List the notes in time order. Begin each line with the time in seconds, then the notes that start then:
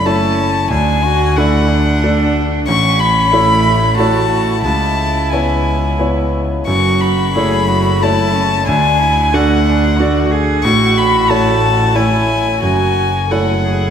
Already playing: F#1 F#2 A3 E4 C#5
0.06 A3 C#4 E4 C#5 A5
0.70 D2 D4 G#5
1.04 F#4
1.36 A3 D4 E4 D5 F#5
1.69 D4
2.04 A3 D4 D5
2.68 A1 C#4 C#6
2.99 B5
3.32 A3 E4 C#5
3.97 A3 E4 F#4 C#5 A5
4.64 C#2 E4 A5
5.31 B3 E4 C#5 G#5
5.99 B3 E4 C#5
6.67 F#1 F#2 F#4 C#6
7.01 B5
7.35 A3 E4 G#4 C#5
7.69 F#4
8.02 A3 E4 C#5 A5
8.34 C#4
8.67 D2 D4 G#5
8.99 E4
9.33 A3 D4 F#4 D5 F#5
9.66 D4
9.99 A3 D4 F#4 D5
10.31 G#4
10.64 A1 A2 F#4 C#6
10.98 B5
11.29 A3 E4 C#5 A5
11.94 A3 E4 C#5 G#5
12.62 F#1 F#2 F#4 G#5
13.29 A3 E4 A4 C#5 F#5
13.65 G#4